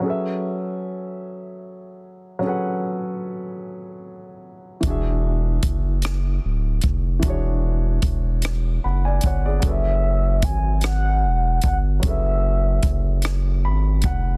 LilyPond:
<<
  \new Staff \with { instrumentName = "Soft synth lead" } { \time 6/8 \key fis \minor \tempo 4. = 50 r2. | r2. | r2. | r2. |
e''4 gis''8 fis''4 fis''8 | e''4. r4. | }
  \new Staff \with { instrumentName = "Grand piano" } { \time 6/8 \key fis \minor << { r2. | r2. | r2. | r2 <fis'' b''>16 <d'' gis''>16 <cis'' fis''>16 <gis' d''>16~ |
<gis' d''>16 r2 r8. | r2 b''8 fis''8 | } \\ { <fis cis' gis' a' b' e''>2. | <fis cis' gis' a' b' fis''>2. | <e d' fis' gis' e''>2. | <e d' fis' gis' cis''>2. |
<fis cis' gis' a' b' e''>2. | <fis cis' gis' a' b' e''>2. | } >> }
  \new Staff \with { instrumentName = "Sub bass" } { \clef bass \time 6/8 \key fis \minor r2. | r2. | e,,4 fis,,4 d,,8 eis,,8 | e,,4 e,,4 fis,,8 g,,8 |
fis,,4 gis,,4 e,,8 g,,8 | fis,,4 fis,,4 gis,,8 eis,,8 | }
  \new DrumStaff \with { instrumentName = "Drums" } \drummode { \time 6/8 r4. r4. | r4. r4. | <hh bd>4 <hh bd>8 <hh ss>4 <hh bd>8 | <hh bd>4 <hh bd>8 <hh ss>4 <hh bd>8 |
<hh bd>4 <hh bd>8 <hh ss>4 <hh bd>8 | <hh bd>4 <hh bd>8 <hh ss>4 <hh bd>8 | }
>>